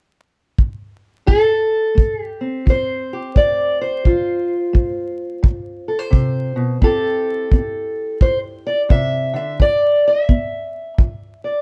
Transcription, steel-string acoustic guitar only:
1.26 A2 A4
1.95 A3
2.24 G4
2.41 C4
2.66 E3
2.70 C5
3.13 G4
3.37 A3 D5
3.81 C5
4.06 D3 F4
4.73 A3
5.43 A2
5.88 A4
5.99 C5
6.11 C3
6.56 B2
6.81 A2 C4 E4 G4 A4
7.53 C4
8.22 A2 C5
8.66 D5
8.89 C3 E5
9.34 D3 E5
9.60 E3 D5
10.08 E5
10.29 B3
10.98 E3
11.44 D5

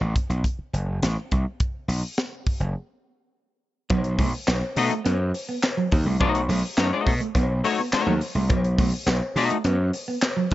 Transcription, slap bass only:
0.01 A1
0.30 B1
0.59 muted slap bass stroke
0.73 F#1
1.02 A1
1.32 C2
1.88 B1
2.47 muted slap bass stroke
2.60 F#1
3.90 B1
4.18 B1
4.48 B1
4.77 B2
5.06 F#2
5.92 D#2
6.06 C2
6.20 B1
6.49 B1
6.78 F#2
7.07 B2
7.35 B1
7.93 muted slap bass stroke
8.07 D#2
8.35 C2
8.50 B1
8.78 B1
9.06 B1
9.36 B2
9.64 F#2

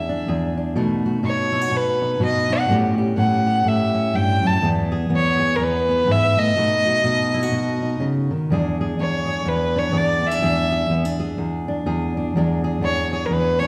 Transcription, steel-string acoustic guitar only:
Already playing: E2 G#3 G#4
0.09 D4
0.28 E2 G#4
0.57 D4
0.76 B2 A3 D#4 F#4
1.06 F#4
1.23 B2 D#4
1.52 E4
1.61 F#4
1.71 B2
2.02 D#4
2.20 B2 F#4
2.50 D#4
2.69 A2 G3 C#4 G4
2.98 G4
3.17 A2 C#4
3.47 G4
3.65 A2
3.94 C#4
4.14 G2
4.42 F#2
4.62 E2 G#3 B3 G#4
4.92 G#4
5.09 E2 B3
5.39 G#4
5.59 E2
5.89 B3
6.07 G#2
6.37 A2
6.56 B2 A3 D#4 F#4
6.87 F#4
7.04 B2 D#4
7.34 E4
7.43 F#4
7.51 B2
7.82 D#4
8.00 C#3
8.31 D#3
8.50 E2 G#3 D4 G#4
8.81 G#4
8.99 E2 D4
9.28 G#4
9.45 E2
9.76 D4
9.92 E2 G#4
10.22 B3
10.31 D4
10.42 E2 G#3 D4 G#4
10.71 G#4
10.90 E2 B3
11.05 D4
11.20 G#4
11.38 E2
11.68 D4
11.86 E2 G#4
12.17 D4
12.36 E2 G#3 D4 G#4
12.64 G#4
12.81 E2 D4
13.13 G#4
13.31 E2
13.61 D4

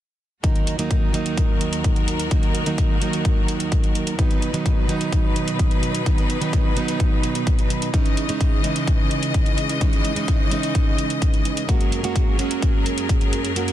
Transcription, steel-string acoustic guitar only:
0.43 D#3 F#3 A#3 D#4
0.78 D#3 F#3 A#3 D#4
1.13 D#3 F#3 A#3 D#4
2.31 D#3 F#3 A#3 D#4
2.66 D#3 F#3 A#3 D#4
3.00 D#3 F#3 A#3 D#4
4.18 D#3 F#3 B3 D#4
4.53 D#3 F#3 B3 D#4
4.88 D#3 F#3 B3 D#4
6.06 D#3 F#3 B3 D#4
6.41 D#3 F#3 B3 D#4
6.75 D#3 F#3 B3 D#4
7.93 E3 G#3 C#4 D#4
8.28 E3 G#3 C#4 D#4
8.63 E3 G#3 C#4 D#4
9.81 E3 G#3 C#4 D#4
10.16 E3 G#3 C#4 D#4
10.50 E3 G#3 C#4 D#4
11.68 G#3 A#3 C#4 F#4
12.03 G#3 A#3 C#4 F#4
12.38 G#3 A#3 C#4 F#4
13.56 G#3 A#3 C#4 F#4

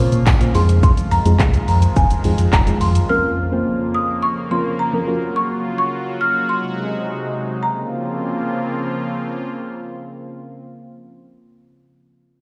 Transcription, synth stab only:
Already playing: A#3
0.00 C4 C#4 F4 C5
0.40 A#3 C4 C#4 F4 C5
0.54 G#3 C4 D#4 F4 G#4
1.25 G#3 C4 D#4 F4 G#4
2.24 G#3 C4 D#4 F4 G#4
2.67 G#3 C4 D#4 F4 G#4
3.09 F3 A#3 C4 C#4 F4 A#4
3.52 F3 A#3 C4 C#4 F4 C5
4.51 F3 A#3 C4 C#4 F4 A#4
4.93 F3 A#3 C4 C#4 F4 A#4
5.07 A#3 C#4 F4 F#4 A#4

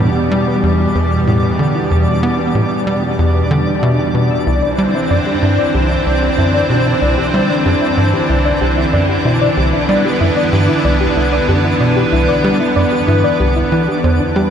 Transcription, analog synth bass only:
0.31 G3
0.63 E2
0.95 E2
1.27 A2
1.59 D3
1.91 E2
2.23 B3
2.55 A2
2.87 G3
3.19 E2
3.51 D3
3.83 B2
4.15 B2
4.47 C2
4.78 G3
5.10 F#2
5.42 G2
5.74 C2
6.06 C2
6.38 F#2
6.70 B2
7.02 C2
7.34 G3
7.66 F#2
7.98 G2
8.29 C2
8.61 C2
8.93 F#2
9.25 B2
9.57 C2
9.89 G3
10.21 F#2
10.53 G2
10.84 C2
11.17 C2
11.48 F#2
11.80 B2
12.12 C2
12.44 G3
12.76 F#2
13.08 G2
13.40 C2
13.72 E3
14.04 E2
14.36 G3

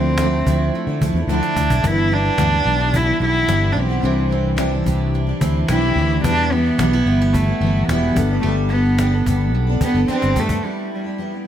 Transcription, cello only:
Already playing: C4
1.30 D4
1.87 E4
2.13 D4
2.96 E4
3.25 E4
3.72 D4
3.80 C4
5.70 E4
6.25 D4
6.52 B3
7.34 A3
7.87 B3
8.41 A3
8.69 B3
9.85 B3
10.11 C4
10.40 A3
10.67 G3
10.94 G3

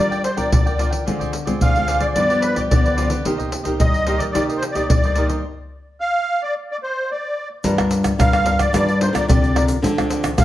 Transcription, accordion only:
Already playing: D5
0.24 C5
0.38 D5
0.53 D5
1.62 F5
2.00 D5
2.14 D5
2.41 B4
2.56 D5
2.70 D5
3.80 D#5
4.17 D5
4.32 D5
4.57 C5
4.72 D5
4.89 D5
6.00 F5
6.43 D5
6.72 D5
6.83 C5
7.12 D5
8.21 F5
8.59 D5
8.74 D5
9.01 C5
9.14 D5
9.28 D5
10.39 F5

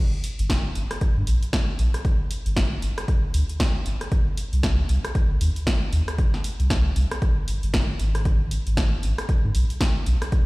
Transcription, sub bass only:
0.39 G1
0.76 G1
1.17 G2
1.27 A#1
1.79 A#1
2.46 G1
2.82 G1
3.34 D2
3.86 G1
4.53 C2
4.89 C2
5.30 G1
5.41 D#2
5.93 D#2
6.60 C2
6.96 C2
7.48 G1
7.63 G1
8.00 G#1
8.67 G#1
9.03 G#1
9.44 G#2
9.55 B1
10.06 B1

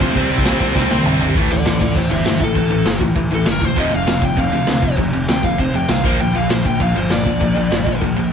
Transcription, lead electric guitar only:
0.01 C4 C5
1.52 A4 D5
1.67 A4 D5
1.81 A4 D5
1.96 C5 E5
2.12 C5 E5
2.27 C5 E5
2.43 A4
3.34 A4
3.49 A#4
3.65 C5
3.80 D#5
3.94 F5
4.25 G5
4.38 F5
5.29 G5
5.44 F5
5.60 C5
5.75 G5
5.90 F5
6.05 C5
6.20 G5
6.37 F5
6.50 C5
6.66 G5
6.82 F5
6.97 C5
7.13 D5

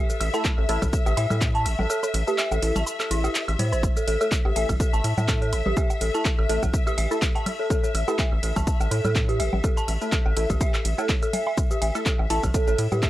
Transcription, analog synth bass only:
0.21 A1
0.58 A1
0.69 A1
0.82 A1
1.07 A1
1.17 A2
1.31 A2
1.66 A1
1.79 A1
2.14 A1
2.52 A1
2.62 A1
2.76 A1
3.11 A1
3.48 A1
3.59 A2
3.72 A1
4.08 A1
4.45 A1
4.56 A1
4.69 A1
4.93 A1
5.04 A2
5.18 A2
5.53 A1
5.66 A1
6.01 A1
6.39 A1
6.49 A1
6.63 A1
6.98 A1
7.95 A1
8.32 A1
8.43 A1
8.56 A1
8.80 A1
8.91 A2
9.05 A2
9.40 A1
9.53 A1
9.88 A1
10.26 A1
10.37 A1
10.50 A1
10.85 A1
11.82 A1
12.19 A1
12.30 A1
12.43 A1
12.68 A1
12.79 A2
12.92 A2

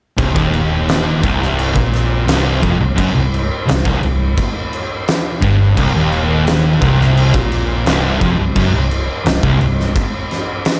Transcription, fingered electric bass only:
0.18 C1
0.36 D#1
1.23 C1
1.76 A#1
2.27 C1
2.63 F1
2.80 C1
2.98 F#1
3.16 C1
3.68 C1
3.86 C1
4.03 C1
5.43 G1
5.78 C1
5.95 D#1
6.82 C1
7.34 A#1
7.87 C1
8.21 F1
8.39 C1
8.56 F#1
8.74 C1
9.26 C1
9.43 C1
9.61 C1

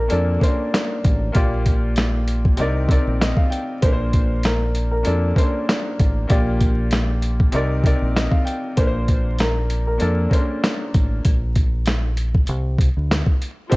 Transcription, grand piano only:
Already playing: A#2 A#3 D4 A#4 C5
0.08 A#2 A#3 D4 A4
0.12 D5
0.39 A#2 A#3 C#4 A#4
0.43 C5
0.47 D4
1.32 A#2 A#3 F4 G4 D5
2.57 C3 C4 D#4 A#4
2.61 D5
2.88 C3 C4 D#4 A#4 D5
3.21 D#5
3.37 F5
3.50 G5
3.82 A#2 A#3 D4 A#4 B4
3.93 C5
5.03 A#2 A#3 D4 A4
5.07 D5
5.34 A#2 A#3 C#4 A#4 C5
5.42 D4
6.27 A#2 A#3 F4 G4
6.31 D5
7.52 C3 C4 D#4 A#4
7.56 D5
7.83 C3 C4 D#4 A#4
7.87 D5
8.16 D#5
8.31 F5
8.45 G5
8.77 A#2 A#3 D4 A#4 B4
8.87 C5
9.98 A#2 A#3 D4 A4
10.02 D5
10.29 A#2 A#3 C#4 A#4 C5
10.37 D4
13.70 F3 C4 D#4 G4

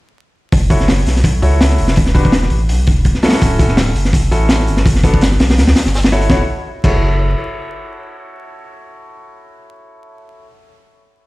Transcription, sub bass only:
0.53 F#1
1.06 B1
1.42 C#2
1.79 E1
2.51 A1
2.69 B1
2.88 E1
3.05 E1
3.42 D1
3.95 F#1
4.32 A1
4.68 G1
5.40 B1
5.58 D2
5.86 G1
6.30 F#1
6.84 F#1

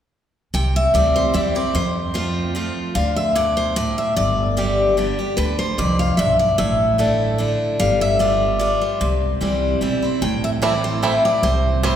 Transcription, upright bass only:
0.54 C2
0.94 D2
1.34 E2
1.74 F2
2.95 D2
4.17 G1
5.38 D2
5.78 C2
6.18 B1
6.59 A1
7.80 G1
9.01 C2
9.41 C2
9.81 B1
10.22 A1
11.43 C2

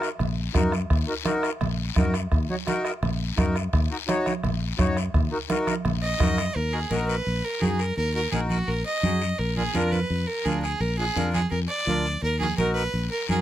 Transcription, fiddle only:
6.02 D#5
6.56 A#4
6.73 G#4
6.90 A#4
7.08 B4
7.44 A#4
7.61 G#4
7.79 A#4
7.97 A#4
8.14 A#4
8.31 G#4
8.49 F#4
8.68 A#4
8.86 D#5
9.39 A#4
9.57 G#4
9.75 A#4
9.92 B4
10.27 A#4
10.45 G#4
10.62 G#4
10.80 A#4
10.98 G#4
11.33 G#4
11.51 A#4
11.68 D5
12.23 A#4
12.40 G#4
12.57 A#4
12.74 B4
13.11 A#4
13.29 G#4

